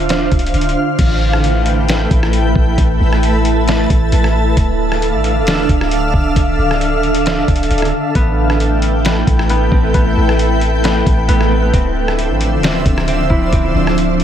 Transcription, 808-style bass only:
0.00 0.28 D1 loud
0.32 0.53 D1 loud
0.54 0.75 D1 loud
0.99 2.07 A1 loud
2.11 2.54 A1 loud
2.55 2.77 A1 loud
2.78 2.99 A1 loud
3.00 3.86 A1 loud
3.90 4.11 A1 loud
4.12 4.55 A1 loud
4.57 5.15 D1 loud
5.13 5.42 A1 loud
5.41 5.68 D1 loud
5.69 6.12 D1 loud
6.14 6.35 D1 loud
6.36 6.58 D1 loud
6.59 7.45 D1 loud
7.48 7.70 D1 loud
7.71 7.92 D1 loud
8.15 9.23 A1 loud
9.27 9.70 A1 loud
9.72 9.93 A1 loud
9.94 10.16 A1 loud
10.17 11.03 A1 loud
11.06 11.28 A1 loud
11.29 11.72 A1 loud
11.74 12.31 D1 loud
12.30 12.59 A1 loud
12.57 12.84 D1 loud
12.86 13.29 D1 loud
13.30 13.52 D1 loud
13.53 13.74 D1 loud
13.75 14.24 D1 loud

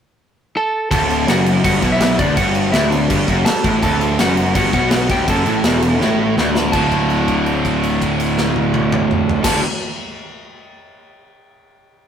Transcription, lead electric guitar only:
0.57 0.90 A4 medium
0.57 0.90 A5 medium
0.91 1.25 A4 medium
0.91 1.29 A5 medium
1.29 1.62 F#4 medium
1.29 1.64 F#5 medium
1.64 1.89 F#4 medium
1.64 1.92 F#5 medium
1.92 2.17 E4 medium
1.92 2.20 E5 loud
2.19 2.36 D4 medium
2.19 2.38 D5 medium
2.36 2.71 F#4 medium
2.36 2.72 F#5 medium
2.72 2.90 E4 medium
2.72 2.91 E5 medium
2.90 3.25 D4 medium
2.90 3.27 D5 medium
3.45 3.80 A4 medium
3.45 3.82 A5 medium
3.83 4.17 A4 medium
3.83 4.17 A5 loud
4.21 4.54 F#4 medium
4.21 4.54 F#5 medium
4.56 4.73 F#4 medium
4.56 4.73 F#5 medium
4.74 5.08 F#4 medium
4.74 5.11 F#5 medium
5.11 5.28 G4 medium
5.11 5.29 G5 medium
5.29 6.34 A4 medium
5.29 6.34 A5 medium
6.72 9.35 A5 medium
9.44 9.60 A5 medium

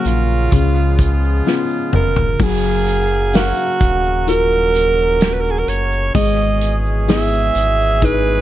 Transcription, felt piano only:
0.00 0.48 C#3 medium
0.00 0.50 F#3 medium
0.00 0.50 A#3 medium
0.00 0.50 C#4 soft
0.53 2.36 C#3 medium
1.46 2.37 B3 medium
1.46 2.37 C#4 soft
1.46 2.37 F4 medium
2.40 6.11 F#3 medium
3.34 4.25 F#4 soft
3.34 4.25 A#4 medium
3.34 4.25 F5 medium
4.28 5.18 F4 soft
4.28 5.18 F#4 soft
4.28 5.19 A#4 medium
6.15 8.41 G#3 medium
7.08 7.99 B3 medium
7.08 7.99 E4 medium
7.08 8.00 G#4 medium
8.02 8.41 D#4 medium
8.02 8.41 E4 soft
8.02 8.41 G#4 medium

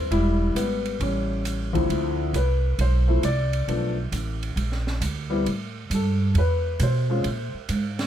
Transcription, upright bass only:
0.11 0.52 E1 medium
0.55 0.97 G#1 medium
1.00 1.85 A1 medium
1.89 2.32 D2 medium
2.33 2.77 C2 medium
2.79 3.22 B1 medium
3.23 3.66 C2 medium
3.68 4.11 B1 medium
4.12 4.55 A1 medium
4.56 5.00 A#1 medium
5.01 5.44 D2 medium
5.46 5.89 A2 medium
5.90 6.34 G2 medium
6.34 6.78 E2 medium
6.80 7.23 B2 loud
7.25 7.52 A#2 medium
7.54 muted upright bass stroke soft
7.69 8.07 G#2 medium

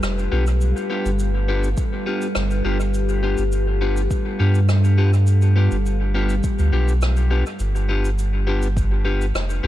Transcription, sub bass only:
0.03 0.29 F1 medium
0.32 0.74 B1 loud
1.06 1.75 G1 loud
2.36 2.62 G1 medium
2.65 3.36 G1 medium
3.39 4.08 G1 medium
4.40 5.69 G2 medium
5.72 6.41 G1 loud
6.59 6.71 D2 medium
6.73 7.43 B1 loud
7.60 9.32 G1 loud
9.35 9.61 F1 medium
9.64 9.67 B1 medium

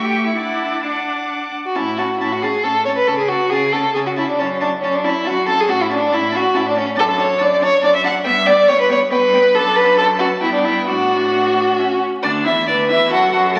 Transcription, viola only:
0.00 0.37 A3 medium
0.37 1.52 D4 medium
1.75 1.83 C#4 medium
1.98 2.06 C#4 soft
2.20 2.28 C#4 soft
2.42 2.50 C#4 soft
2.64 2.72 C#4 soft
2.87 2.95 C#4 soft
3.08 3.16 C#4 medium
3.30 3.38 C#4 soft
3.52 3.60 C#4 soft
3.74 3.82 C#4 medium
3.95 4.03 C#4 medium
4.18 4.26 C#4 soft
4.40 4.48 C#4 medium
4.62 4.70 C#4 medium
4.82 4.90 C#4 soft
5.04 5.12 C#4 medium
5.25 5.33 C#4 medium
5.47 5.55 C#4 soft
5.68 5.76 C#4 medium
5.89 5.97 C#4 medium
6.12 6.20 C#4 medium
6.33 6.41 C#4 medium
6.53 6.61 C#4 medium
6.75 6.83 C#4 medium
6.97 7.05 D4 medium
7.17 7.25 D4 medium
7.40 7.48 D4 medium
7.61 7.69 D4 medium
7.83 7.91 D4 medium
8.03 8.11 D4 medium
8.25 8.33 B3 medium
8.46 8.54 B3 medium
8.68 8.76 B3 medium
8.89 8.97 B3 medium
9.10 9.18 B3 medium
9.32 9.40 B3 medium
9.54 9.95 D4 medium
9.97 10.05 D4 medium
10.19 10.27 C#4 medium
10.41 10.89 B3 medium
10.87 11.80 D4 medium
11.79 12.03 C#4 medium
12.23 12.46 D4 medium
12.45 12.66 E4 medium
12.67 12.91 D4 medium
12.89 13.10 E4 medium
13.10 13.32 F#4 medium
13.32 13.53 F#4 medium
13.54 13.60 A4 medium

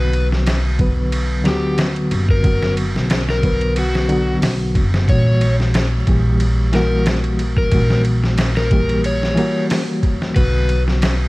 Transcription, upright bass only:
0.00 1.46 B1 medium
1.46 2.09 D2 medium
2.11 2.92 F#1 medium
2.95 4.39 B1 medium
4.42 4.77 B1 medium
4.75 5.04 F#1 medium
5.08 6.04 A#1 medium
6.07 7.69 A#1 medium
7.72 9.34 A#1 medium
10.36 11.28 B1 medium

